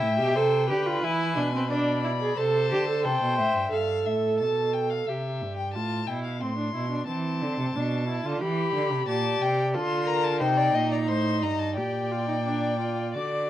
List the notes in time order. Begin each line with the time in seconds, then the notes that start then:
Already playing: E4 E5 G5
0.02 A2
0.19 B2 G4
0.35 C3 A4 C5
0.69 D3 G4 B4
0.86 F4
1.03 E3 E4 G#5
1.37 B2 D4
1.55 C4
1.70 D4 D5 B5
2.04 E4
2.21 G#4
2.37 C3 A4 C5 A5
2.71 D3 G4
2.88 A4
3.04 C3 A4 C5 G5
3.22 B2
3.38 A2 E5
3.55 G2
3.72 G2 A4 F5
4.06 A2 E5
4.39 B2 A5
4.73 G5
4.90 F5
5.07 C3 G4 E5
5.42 G2
5.57 G5
5.73 A2 F4 A5
6.07 B2 E4 G5
6.24 F5
6.41 A2 C4 C6
6.59 D4
6.75 B2 E4
6.92 D4
7.07 E3 C4 A5
7.42 D3
7.59 C3
7.75 B2 D4
8.09 E4
8.25 D3 F4
8.41 E3 G4 B5
8.76 D3
8.92 C3
9.08 A#2 G4 D5 A5
9.41 C3 G5
9.74 D3 F4 A4 C6
10.07 A#4 A#5
10.24 A5
10.40 C3 D#4 C5 G5
10.57 D5
10.74 A#2 D#5
10.91 D5 A#5
11.08 A2 C5 C6
11.42 G2 D#5 A#5
11.58 A5
11.76 A#2 G4 D5 G5
12.11 F4
12.28 D#4
12.45 D4
12.80 F4
13.14 D3 F#4 D5 D6